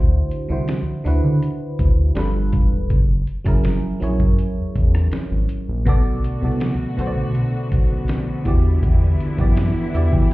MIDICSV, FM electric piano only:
0, 0, Header, 1, 2, 480
1, 0, Start_track
1, 0, Key_signature, 1, "minor"
1, 0, Tempo, 740741
1, 1882, Time_signature, 4, 2, 24, 8
1, 6699, End_track
2, 0, Start_track
2, 0, Title_t, "FM electric piano"
2, 0, Program_c, 0, 5
2, 0, Control_c, 0, 64, 127
2, 0, Note_on_c, 0, 50, 93
2, 0, Note_on_c, 0, 62, 89
2, 0, Note_on_c, 0, 64, 89
2, 0, Note_on_c, 0, 66, 90
2, 0, Note_on_c, 0, 72, 108
2, 200, Note_off_c, 0, 50, 0
2, 202, Note_off_c, 0, 62, 0
2, 205, Note_off_c, 0, 64, 0
2, 208, Note_off_c, 0, 66, 0
2, 211, Note_off_c, 0, 72, 0
2, 315, Note_on_c, 0, 50, 89
2, 320, Note_on_c, 0, 62, 75
2, 326, Note_on_c, 0, 64, 78
2, 332, Note_on_c, 0, 66, 78
2, 337, Note_on_c, 0, 72, 90
2, 553, Note_off_c, 0, 50, 0
2, 555, Note_off_c, 0, 62, 0
2, 558, Note_off_c, 0, 64, 0
2, 561, Note_off_c, 0, 66, 0
2, 564, Note_off_c, 0, 72, 0
2, 674, Note_on_c, 0, 50, 94
2, 680, Note_on_c, 0, 62, 93
2, 686, Note_on_c, 0, 64, 93
2, 692, Note_on_c, 0, 66, 91
2, 698, Note_on_c, 0, 71, 107
2, 1303, Note_off_c, 0, 50, 0
2, 1305, Note_off_c, 0, 62, 0
2, 1308, Note_off_c, 0, 64, 0
2, 1311, Note_off_c, 0, 66, 0
2, 1314, Note_off_c, 0, 71, 0
2, 1393, Note_on_c, 0, 55, 97
2, 1399, Note_on_c, 0, 62, 90
2, 1405, Note_on_c, 0, 65, 90
2, 1410, Control_c, 0, 64, 0
2, 1411, Note_on_c, 0, 69, 94
2, 1416, Note_on_c, 0, 71, 108
2, 1542, Control_c, 0, 64, 127
2, 1782, Note_off_c, 0, 55, 0
2, 1785, Note_off_c, 0, 62, 0
2, 1788, Note_off_c, 0, 65, 0
2, 1791, Note_off_c, 0, 69, 0
2, 1793, Note_off_c, 0, 71, 0
2, 1889, Control_c, 0, 64, 0
2, 2009, Control_c, 0, 64, 127
2, 2232, Note_on_c, 0, 54, 94
2, 2238, Note_on_c, 0, 61, 87
2, 2244, Note_on_c, 0, 64, 86
2, 2250, Note_on_c, 0, 68, 82
2, 2256, Note_on_c, 0, 70, 103
2, 2471, Note_off_c, 0, 54, 0
2, 2474, Note_off_c, 0, 61, 0
2, 2477, Note_off_c, 0, 64, 0
2, 2480, Note_off_c, 0, 68, 0
2, 2483, Note_off_c, 0, 70, 0
2, 2592, Note_on_c, 0, 54, 91
2, 2598, Note_on_c, 0, 61, 80
2, 2604, Note_on_c, 0, 64, 81
2, 2610, Note_on_c, 0, 68, 80
2, 2615, Note_on_c, 0, 73, 102
2, 3221, Note_off_c, 0, 54, 0
2, 3224, Note_off_c, 0, 61, 0
2, 3227, Note_off_c, 0, 64, 0
2, 3230, Note_off_c, 0, 68, 0
2, 3233, Note_off_c, 0, 73, 0
2, 3794, Note_on_c, 0, 47, 127
2, 3800, Note_on_c, 0, 59, 110
2, 3807, Note_on_c, 0, 66, 109
2, 3811, Note_on_c, 0, 69, 110
2, 3812, Control_c, 0, 64, 0
2, 3818, Note_on_c, 0, 74, 127
2, 3917, Control_c, 0, 64, 127
2, 4032, Note_off_c, 0, 47, 0
2, 4035, Note_off_c, 0, 59, 0
2, 4039, Note_off_c, 0, 66, 0
2, 4041, Note_off_c, 0, 69, 0
2, 4044, Note_off_c, 0, 74, 0
2, 4156, Note_on_c, 0, 47, 83
2, 4163, Note_on_c, 0, 59, 76
2, 4168, Note_on_c, 0, 66, 79
2, 4174, Note_on_c, 0, 69, 75
2, 4180, Note_on_c, 0, 74, 94
2, 4393, Note_off_c, 0, 47, 0
2, 4397, Note_off_c, 0, 59, 0
2, 4399, Note_off_c, 0, 66, 0
2, 4402, Note_off_c, 0, 69, 0
2, 4405, Note_off_c, 0, 74, 0
2, 4516, Note_on_c, 0, 47, 95
2, 4522, Note_on_c, 0, 59, 87
2, 4527, Note_on_c, 0, 66, 89
2, 4533, Note_on_c, 0, 69, 87
2, 4539, Note_on_c, 0, 72, 88
2, 4573, Note_off_c, 0, 72, 0
2, 4581, Note_on_c, 0, 74, 107
2, 5143, Note_off_c, 0, 47, 0
2, 5146, Note_off_c, 0, 59, 0
2, 5149, Note_off_c, 0, 66, 0
2, 5152, Note_off_c, 0, 69, 0
2, 5176, Note_off_c, 0, 74, 0
2, 5474, Note_on_c, 0, 52, 92
2, 5480, Note_on_c, 0, 59, 84
2, 5486, Note_on_c, 0, 66, 88
2, 5491, Control_c, 0, 64, 0
2, 5491, Note_on_c, 0, 67, 90
2, 5497, Note_on_c, 0, 74, 100
2, 5619, Control_c, 0, 64, 127
2, 5958, Note_off_c, 0, 52, 0
2, 5961, Note_off_c, 0, 59, 0
2, 5964, Note_off_c, 0, 66, 0
2, 5967, Note_off_c, 0, 67, 0
2, 5970, Note_off_c, 0, 74, 0
2, 6074, Note_on_c, 0, 52, 89
2, 6080, Note_on_c, 0, 59, 86
2, 6085, Note_on_c, 0, 66, 79
2, 6091, Note_on_c, 0, 67, 81
2, 6097, Note_on_c, 0, 74, 106
2, 6312, Note_off_c, 0, 52, 0
2, 6315, Note_off_c, 0, 59, 0
2, 6318, Note_off_c, 0, 66, 0
2, 6321, Note_off_c, 0, 67, 0
2, 6324, Note_off_c, 0, 74, 0
2, 6433, Note_on_c, 0, 52, 88
2, 6439, Note_on_c, 0, 59, 81
2, 6445, Note_on_c, 0, 66, 80
2, 6445, Note_on_c, 0, 76, 80
2, 6450, Note_on_c, 0, 67, 81
2, 6456, Note_on_c, 0, 74, 99
2, 6556, Note_off_c, 0, 76, 0
2, 6564, Note_on_c, 0, 79, 72
2, 6675, Note_off_c, 0, 79, 0
2, 6684, Note_off_c, 0, 66, 0
2, 6686, Note_off_c, 0, 67, 0
2, 6689, Note_off_c, 0, 74, 0
2, 6699, Note_off_c, 0, 52, 0
2, 6699, Note_off_c, 0, 59, 0
2, 6699, End_track
0, 0, End_of_file